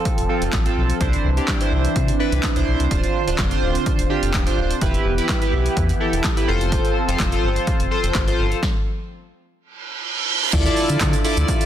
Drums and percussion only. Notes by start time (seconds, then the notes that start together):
0.05 kick, closed hi-hat
0.18 closed hi-hat
0.42 closed hi-hat
0.53 kick, snare, clap, closed hi-hat
0.66 closed hi-hat
0.90 closed hi-hat
1.01 kick, closed hi-hat
1.13 closed hi-hat
1.37 closed hi-hat
1.48 kick, snare, clap, closed hi-hat
1.61 closed hi-hat
1.85 closed hi-hat
1.96 kick, closed hi-hat
2.08 closed hi-hat
2.32 closed hi-hat
2.43 kick, snare, clap, closed hi-hat
2.56 closed hi-hat
2.80 closed hi-hat
2.91 kick, closed hi-hat
3.04 closed hi-hat
3.28 closed hi-hat
3.38 kick, snare, clap, closed hi-hat
3.51 closed hi-hat
3.75 closed hi-hat
3.86 kick, closed hi-hat
3.99 closed hi-hat
4.23 closed hi-hat
4.34 kick, snare, clap, closed hi-hat
4.47 closed hi-hat
4.71 closed hi-hat
4.81 kick, closed hi-hat
4.94 closed hi-hat
5.18 closed hi-hat
5.29 kick, snare, clap, closed hi-hat
5.42 closed hi-hat
5.66 closed hi-hat
5.77 kick, closed hi-hat
5.89 closed hi-hat
6.13 closed hi-hat
6.24 kick, snare, clap, closed hi-hat
6.37 closed hi-hat
6.61 closed hi-hat
6.72 kick, closed hi-hat
6.85 closed hi-hat
7.09 closed hi-hat
7.20 kick, snare, clap, closed hi-hat
7.32 closed hi-hat
7.56 closed hi-hat
7.67 kick, closed hi-hat
7.80 closed hi-hat
8.04 closed hi-hat
8.15 kick, snare, clap, closed hi-hat
8.28 closed hi-hat
8.52 closed hi-hat
8.63 kick, snare
10.53 kick, closed hi-hat, crash, shaker
10.66 closed hi-hat, shaker
10.77 open hi-hat, shaker
10.90 closed hi-hat, shaker
11.01 kick, snare, clap, closed hi-hat, shaker
11.13 closed hi-hat, shaker
11.25 open hi-hat, shaker
11.37 closed hi-hat, shaker
11.48 kick, closed hi-hat, shaker
11.61 closed hi-hat, shaker